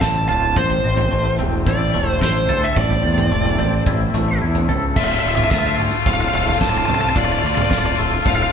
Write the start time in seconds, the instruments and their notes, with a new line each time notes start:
Already playing: string section D3 C4 F4, clean electric guitar D3 A3
0.01 fingered electric bass A1, clean electric guitar C4, lead electric guitar A5, kick, snare
0.28 fingered electric bass D1, clean electric guitar F4, lead electric guitar A5, floor tom
0.56 fingered electric bass A1, clean electric guitar A2, string section A3 G4 C5, lead electric guitar C5, kick, floor tom
0.70 floor tom
0.84 fingered electric bass A1, clean electric guitar C4
0.97 floor tom
1.11 fingered electric bass A1, clean electric guitar A3
1.39 fingered electric bass E1, clean electric guitar C4, floor tom
1.66 fingered electric bass A1, clean electric guitar E4, lead electric guitar D5, kick, floor tom
1.94 fingered electric bass E1, clean electric guitar A3, floor tom
2.21 fingered electric bass A1, clean electric guitar E4, lead electric guitar C5, kick, snare
2.49 fingered electric bass D2, clean electric guitar A4, floor tom
2.64 lead electric guitar E5
2.76 fingered electric bass A1, clean electric guitar A2, lead electric guitar D5, kick, floor tom
2.90 floor tom
3.04 fingered electric bass E2, clean electric guitar C4
3.18 floor tom, mid tom
3.31 fingered electric bass E1, clean electric guitar A3
3.45 floor tom
3.58 fingered electric bass A1, clean electric guitar C4, floor tom
3.86 fingered electric bass A1, clean electric guitar E4, kick, floor tom
4.14 fingered electric bass A1, clean electric guitar A3, floor tom
4.42 fingered electric bass E2, clean electric guitar E4
4.55 floor tom
4.69 fingered electric bass C#2, clean electric guitar A4, floor tom
4.96 fingered electric bass D1, clean electric guitar D2, string section D3 A3 F4, overdriven electric guitar A3 F4, lead electric guitar E5, kick, floor tom, crash
5.04 overdriven electric guitar A3 F4, lead electric guitar E5
5.12 overdriven electric guitar A3 F4, lead electric guitar E5
5.19 overdriven electric guitar A3 F4, lead electric guitar E5
5.24 fingered electric bass D1, clean electric guitar D3
5.28 overdriven electric guitar A3 F4, lead electric guitar E5
5.36 overdriven electric guitar A3 F4, lead electric guitar E5, floor tom, mid tom
5.43 overdriven electric guitar A3 F4, lead electric guitar E5
5.51 fingered electric bass D2, overdriven electric guitar A3 F4, clean electric guitar F4, lead electric guitar E5, kick, snare, floor tom
5.59 overdriven electric guitar A3 F4, lead electric guitar E5
5.65 overdriven electric guitar A3 F4, lead electric guitar E5, floor tom
5.75 overdriven electric guitar A3 F4, clean electric guitar A3, mid tom
5.83 overdriven electric guitar A3 F4
5.91 overdriven electric guitar A3 F4
5.98 overdriven electric guitar A3 F4
6.06 fingered electric bass D1, clean electric guitar A2, overdriven electric guitar A3 F4, lead electric guitar F5, kick, floor tom
6.13 overdriven electric guitar A3 F4, lead electric guitar F5
6.21 overdriven electric guitar A3 F4, lead electric guitar F5
6.28 overdriven electric guitar A3 F4, lead electric guitar F5
6.34 fingered electric bass D1, clean electric guitar A3, overdriven electric guitar A3, lead electric guitar F5, floor tom
6.38 overdriven electric guitar F4
6.43 overdriven electric guitar A3 F4, lead electric guitar F5
6.47 lead electric guitar F5, floor tom
6.52 overdriven electric guitar A3 F4
6.60 fingered electric bass D1, clean electric guitar D3, overdriven electric guitar A3 F4, lead electric guitar A5, kick, snare, mid tom
6.68 overdriven electric guitar A3 F4, lead electric guitar A5
6.75 overdriven electric guitar A3 F4, lead electric guitar A5, floor tom
6.84 overdriven electric guitar A3 F4, lead electric guitar A5
6.88 fingered electric bass C2, clean electric guitar A3, overdriven electric guitar A3 F4, floor tom
6.95 lead electric guitar A5
6.99 overdriven electric guitar A3 F4, lead electric guitar A5
7.06 overdriven electric guitar A3 F4, lead electric guitar A5
7.16 fingered electric bass D1, clean electric guitar D2, overdriven electric guitar A3 F4, lead electric guitar D5, kick, floor tom
7.24 overdriven electric guitar A3 F4, lead electric guitar D5
7.31 overdriven electric guitar A3 F4, lead electric guitar D5
7.38 overdriven electric guitar A3 F4, lead electric guitar D5
7.43 fingered electric bass D2, clean electric guitar D3, overdriven electric guitar A3, lead electric guitar D5
7.49 overdriven electric guitar F4
7.54 overdriven electric guitar A3 F4, lead electric guitar D5, floor tom, mid tom
7.62 overdriven electric guitar A3 F4, lead electric guitar D5
7.69 fingered electric bass D1, overdriven electric guitar A3 F4, clean electric guitar F4, lead electric guitar D5, kick, snare, floor tom
7.77 overdriven electric guitar A3 F4, lead electric guitar D5
7.84 overdriven electric guitar A3 F4, lead electric guitar D5, floor tom
7.91 overdriven electric guitar A3
7.95 fingered electric bass D1, clean electric guitar A3, overdriven electric guitar F4
8.00 overdriven electric guitar A3 F4
8.08 overdriven electric guitar A3 F4
8.14 overdriven electric guitar A3
8.18 overdriven electric guitar A3 F4
8.25 fingered electric bass D1, clean electric guitar A2, overdriven electric guitar F4, lead electric guitar F5, kick, floor tom
8.30 overdriven electric guitar A3
8.34 overdriven electric guitar A3 F4, lead electric guitar F5
8.42 overdriven electric guitar A3 F4, lead electric guitar F5